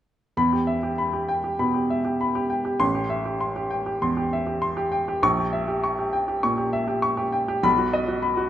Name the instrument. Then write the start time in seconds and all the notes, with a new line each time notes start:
grand piano
0.37 E2 B5
0.53 G4
0.67 E5
0.83 G4
0.98 B5
1.13 G4
1.29 G5
1.44 G4
1.59 B2 B5
1.74 G4
1.90 E5
2.05 G4
2.21 B5
2.35 G4
2.50 G5
2.65 G4
2.80 A1 C6
2.95 G4
3.10 E5
3.26 G4
3.41 C6
3.56 G4
3.71 G5
3.86 G4
4.02 E2 C6
4.17 G4
4.33 E5
4.47 G4
4.62 C6
4.77 G4
4.92 G5
5.08 G4
5.23 A#1 C#6
5.39 G4
5.53 E5
5.68 G4
5.84 C#6
5.98 G4
6.13 G5
6.28 G4
6.43 A#2 C#6
6.58 G4
6.73 E5
6.88 G4
7.02 C#6
7.17 G4
7.32 G5
7.48 G4
7.63 B1 B5
7.78 F#4
7.93 D#5
8.08 F#4
8.22 B5
8.37 F#4